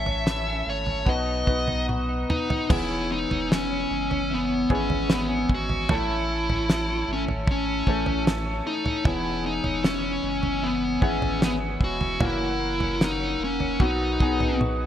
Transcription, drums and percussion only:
0.06 floor tom
0.27 snare
0.86 floor tom
1.06 kick
1.47 kick
1.68 floor tom
1.89 high tom
2.30 mid tom
2.50 floor tom
2.70 kick, floor tom, crash
3.31 floor tom
3.52 snare
4.11 floor tom
4.70 kick
4.90 floor tom
5.10 snare
5.49 kick
5.69 floor tom
5.89 floor tom
6.50 floor tom
6.70 snare
7.28 floor tom
7.47 kick
7.87 kick
8.06 floor tom
8.27 snare
8.86 floor tom
9.05 kick, floor tom
9.64 floor tom
9.84 snare
10.43 floor tom
11.02 kick
11.22 floor tom
11.42 snare
11.81 kick
12.01 floor tom
12.21 floor tom
12.80 floor tom
13.01 snare
13.60 floor tom
13.80 kick
14.20 kick
14.40 floor tom
14.61 high tom

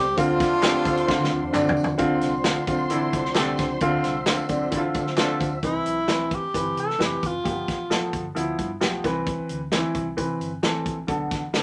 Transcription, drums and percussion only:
0.17 kick, closed hi-hat, tambourine
0.40 kick, snare, closed hi-hat, tambourine
0.63 snare, clap, closed hi-hat, tambourine
0.85 kick, closed hi-hat, tambourine
0.97 closed hi-hat
1.08 kick, snare, tambourine
1.24 snare
1.54 clap, mid tom, tambourine
1.69 floor tom
1.77 tambourine
1.84 floor tom
1.98 kick, closed hi-hat
2.21 snare, closed hi-hat, tambourine
2.44 snare, clap, closed hi-hat, tambourine
2.67 kick, closed hi-hat, tambourine
2.90 closed hi-hat, tambourine
3.13 kick, closed hi-hat, tambourine
3.25 snare
3.35 snare, clap, closed hi-hat, tambourine
3.57 kick, snare, closed hi-hat, tambourine
3.80 kick, closed hi-hat
4.04 snare, closed hi-hat, tambourine
4.26 snare, clap, closed hi-hat, tambourine
4.49 kick, closed hi-hat, tambourine
4.72 kick, closed hi-hat, tambourine
4.94 kick, closed hi-hat, tambourine
5.07 snare
5.17 snare, clap, closed hi-hat, tambourine
5.40 kick, closed hi-hat, tambourine
5.63 kick, closed hi-hat
5.86 closed hi-hat
6.08 snare, closed hi-hat
6.31 kick, closed hi-hat
6.54 kick, closed hi-hat
6.77 closed hi-hat
6.90 snare
7.00 snare, closed hi-hat
7.23 kick, closed hi-hat
7.45 kick, closed hi-hat
7.68 kick, snare, closed hi-hat
7.91 snare, closed hi-hat
8.13 kick, closed hi-hat
8.36 closed hi-hat
8.59 kick, closed hi-hat
8.81 snare, closed hi-hat
9.04 kick, snare, closed hi-hat
9.26 kick, closed hi-hat
9.49 closed hi-hat
9.72 snare, closed hi-hat
9.95 kick, closed hi-hat
10.18 kick, closed hi-hat
10.41 closed hi-hat
10.63 snare, closed hi-hat
10.86 kick, closed hi-hat
11.08 kick, closed hi-hat
11.31 kick, snare, closed hi-hat
11.54 snare, closed hi-hat

